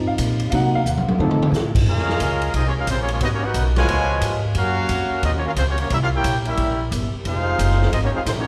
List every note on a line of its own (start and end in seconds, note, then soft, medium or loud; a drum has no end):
0.00 0.17 G#2 medium
0.00 0.48 F3 medium
0.00 0.48 C4 soft
0.00 0.48 D#4 medium
0.07 0.49 F5 medium
0.18 0.51 A#2 loud
0.18 kick soft
0.18 hi-hat pedal medium
0.18 ride loud
0.40 ride medium
0.50 0.85 C3 medium
0.50 0.77 F#3 medium
0.50 0.77 A#3 soft
0.50 0.78 D#4 medium
0.50 0.53 F5 medium
0.50 kick soft
0.50 ride medium
0.55 0.74 F#5 medium
0.75 0.83 F5 medium
0.85 0.97 D#2 loud
0.85 0.87 F5 medium
0.85 hi-hat pedal medium
0.89 1.19 F#5 medium
0.97 1.07 C2 medium
0.97 high tom medium
1.08 1.18 A#1 medium
1.08 high tom medium
1.18 1.39 F2 loud
1.18 1.70 F3 loud
1.18 1.45 A3 soft
1.18 1.70 C4 loud
1.18 1.45 C4 soft
1.18 1.70 D#4 loud
1.18 1.45 D#4 medium
1.18 1.70 A4 loud
1.18 mid tom medium
1.31 mid tom medium
1.40 muted upright bass stroke soft
1.40 mid tom loud
1.52 1.85 A2 loud
1.52 snare medium
1.52 hi-hat pedal medium
1.75 kick medium
1.75 crash loud
1.87 2.19 F2 medium
1.87 2.50 G#3 medium
1.87 2.50 C#4 medium
1.87 2.51 C#4 loud
1.87 2.50 F4 medium
1.87 2.51 G#4 medium
1.87 2.51 A#4 loud
1.87 2.51 F5 loud
1.87 kick soft
1.98 snare soft
2.09 snare medium
2.20 2.53 C#2 loud
2.20 kick soft
2.20 hi-hat pedal medium
2.20 ride medium
2.42 ride medium
2.54 2.86 C2 medium
2.54 2.66 C4 medium
2.54 2.66 D#4 medium
2.54 2.65 F4 medium
2.54 2.66 G#4 medium
2.54 2.66 D#5 loud
2.54 kick soft
2.54 ride medium
2.66 2.71 F3 medium
2.66 2.71 G#3 medium
2.66 2.72 A#3 medium
2.66 2.71 C#4 medium
2.66 2.71 F4 medium
2.66 2.72 G#4 medium
2.66 2.71 C#5 loud
2.77 2.87 G#3 medium
2.77 2.87 C#4 medium
2.77 2.88 C#4 medium
2.77 2.87 F4 medium
2.77 2.88 G#4 medium
2.77 2.88 A#4 medium
2.77 2.88 F5 loud
2.87 3.20 A#1 loud
2.87 2.98 G#3 medium
2.87 2.99 C4 medium
2.87 2.99 C#4 medium
2.87 2.99 F4 medium
2.87 2.99 C5 loud
2.87 kick soft
2.87 hi-hat pedal medium
2.87 ride medium
2.98 3.09 F3 medium
2.98 3.09 G#3 medium
2.98 3.10 A#3 medium
2.98 3.09 C#4 medium
2.98 3.10 F4 medium
2.98 3.10 G#4 medium
2.98 3.10 C#5 loud
3.08 3.20 F3 medium
3.08 3.20 G#3 medium
3.08 3.22 A#3 medium
3.08 3.20 C#4 medium
3.08 3.21 F4 medium
3.08 3.21 G#4 medium
3.08 3.21 C#5 medium
3.08 ride medium
3.21 3.54 G#1 medium
3.21 3.26 F#3 medium
3.21 3.26 B3 medium
3.21 3.27 B3 medium
3.21 3.26 D#4 medium
3.21 3.27 F#4 medium
3.21 3.27 A#4 medium
3.21 3.27 D#5 loud
3.21 kick soft
3.21 ride medium
3.33 3.43 A#3 medium
3.33 3.43 C#4 medium
3.33 3.43 D#4 medium
3.33 3.43 F#4 medium
3.33 3.43 C#5 loud
3.44 3.67 B3 medium
3.44 3.66 D#4 medium
3.44 3.67 D#4 medium
3.44 3.67 F#4 medium
3.44 3.66 A#4 medium
3.44 3.66 B4 medium
3.44 3.66 F#5 loud
3.54 3.87 B1 loud
3.54 kick soft
3.54 hi-hat pedal medium
3.54 ride medium
3.76 4.40 B2 loud
3.76 4.40 F3 loud
3.76 4.40 G#3 loud
3.76 4.40 F4 loud
3.76 4.40 B4 loud
3.76 4.40 C#5 loud
3.76 4.39 G#5 loud
3.76 snare medium
3.76 ride medium
3.88 4.21 C#2 loud
3.88 kick soft
3.88 ride medium
4.21 4.54 G#2 loud
4.21 kick soft
4.21 hi-hat pedal medium
4.21 ride medium
4.55 4.88 F#2 medium
4.55 5.19 A#3 loud
4.55 5.19 C#4 medium
4.55 5.20 C#4 loud
4.55 5.19 F#4 loud
4.55 5.20 F#4 loud
4.55 5.20 A#4 loud
4.55 5.20 F5 loud
4.55 kick soft
4.55 ride medium
4.89 5.09 F2 loud
4.89 kick soft
4.89 hi-hat pedal medium
4.89 ride medium
5.10 muted upright bass stroke soft
5.23 5.55 D#2 loud
5.23 5.30 C4 medium
5.23 5.29 D#4 medium
5.23 5.30 F4 medium
5.23 5.29 G#4 medium
5.23 5.29 D#5 loud
5.23 kick soft
5.23 ride medium
5.34 5.45 F3 medium
5.34 5.44 A#3 medium
5.34 5.46 A#3 medium
5.34 5.44 C#4 medium
5.34 5.46 F4 medium
5.34 5.45 F#4 medium
5.34 5.45 C#5 loud
5.45 5.50 A#3 medium
5.45 5.50 C#4 medium
5.45 5.51 C#4 medium
5.45 5.50 F4 medium
5.45 5.51 F#4 medium
5.45 5.51 A#4 medium
5.45 5.51 F5 loud
5.56 5.89 C#2 loud
5.56 5.62 G#3 medium
5.56 5.62 C4 medium
5.56 5.62 C#4 medium
5.56 5.62 F4 medium
5.56 5.62 C5 medium
5.56 kick soft
5.56 hi-hat pedal medium
5.56 ride medium
5.68 5.79 F3 medium
5.68 5.78 A#3 medium
5.68 5.79 A#3 medium
5.68 5.79 C#4 medium
5.68 5.79 F4 medium
5.68 5.79 F#4 medium
5.68 5.79 C#5 loud
5.78 5.90 F3 medium
5.78 5.90 A#3 medium
5.78 5.90 C#4 medium
5.78 5.90 F4 medium
5.78 5.90 F#4 medium
5.78 5.90 C#5 medium
5.78 ride medium
5.90 6.23 C2 loud
5.90 5.97 G3 medium
5.90 5.97 A#3 medium
5.90 5.96 C#4 medium
5.90 5.97 E4 medium
5.90 5.96 G4 medium
5.90 5.96 A#4 medium
5.90 5.96 E5 loud
5.90 kick soft
5.90 ride medium
6.02 6.07 C#4 medium
6.02 6.07 F4 medium
6.02 6.08 G4 medium
6.02 6.07 A#4 medium
6.02 6.07 F5 medium
6.13 6.34 A#3 medium
6.13 6.34 E4 medium
6.13 6.34 G4 medium
6.13 6.34 A#4 medium
6.13 6.35 C#5 medium
6.13 6.35 G5 loud
6.24 6.57 A#1 loud
6.24 kick soft
6.24 hi-hat pedal medium
6.24 ride medium
6.45 6.81 G3 medium
6.45 6.81 A#3 medium
6.45 6.82 C#4 medium
6.45 6.81 E4 medium
6.45 6.82 G4 medium
6.45 6.82 A#4 medium
6.45 6.82 E5 medium
6.45 ride soft
6.57 6.90 A#1 medium
6.57 kick soft
6.57 ride medium
6.91 7.11 G1 loud
6.91 kick soft
6.91 hi-hat pedal medium
6.91 ride medium
7.14 muted upright bass stroke soft
7.25 7.58 F1 medium
7.25 7.88 G#3 medium
7.25 7.89 C4 medium
7.25 7.89 D#4 medium
7.25 7.88 F4 medium
7.25 7.89 G#4 medium
7.25 7.89 C5 medium
7.25 7.89 F5 loud
7.25 kick soft
7.25 ride medium
7.59 7.91 F#1 loud
7.59 kick soft
7.59 hi-hat pedal medium
7.59 ride medium
7.71 snare soft
7.82 snare medium
7.92 8.12 G#1 medium
7.92 7.97 G#3 medium
7.92 7.97 C4 medium
7.92 7.97 D#4 medium
7.92 7.98 F4 medium
7.92 7.97 G#4 medium
7.92 7.98 D#5 medium
7.92 kick soft
7.92 ride medium
8.03 8.09 A#3 medium
8.03 8.08 C#4 medium
8.03 8.09 D#4 medium
8.03 8.09 F#4 medium
8.03 8.09 C#5 medium
8.13 8.19 G#3 medium
8.13 8.19 C4 medium
8.13 8.20 D#4 medium
8.13 8.19 F4 medium
8.13 8.20 G#4 medium
8.13 8.20 C5 medium
8.13 8.20 F5 medium
8.13 muted upright bass stroke soft
8.26 8.46 A#1 loud
8.26 8.31 D#3 medium
8.26 8.31 G#3 medium
8.26 8.31 C4 medium
8.26 8.31 D#4 medium
8.26 8.31 F4 medium
8.26 8.31 C5 medium
8.26 kick soft
8.26 snare soft
8.26 hi-hat pedal medium
8.26 ride medium
8.38 8.47 A#3 medium
8.38 8.47 C#4 medium
8.38 8.47 D#4 medium
8.38 8.47 F#4 medium
8.38 8.47 C#5 medium